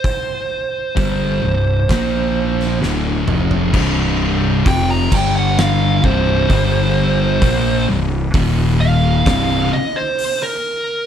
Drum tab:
CC |----------------|x-----x---------|----------------|
HH |o---o---o-------|----o-------o---|o---o---o---o---|
SD |--------o--oo---|--------o-------|--------o-------|
T2 |--------------o-|----------------|----------------|
FT |---------------o|----------------|----------------|
BD |o---o---o-------|o---o-o---o-o---|o---o---o-------|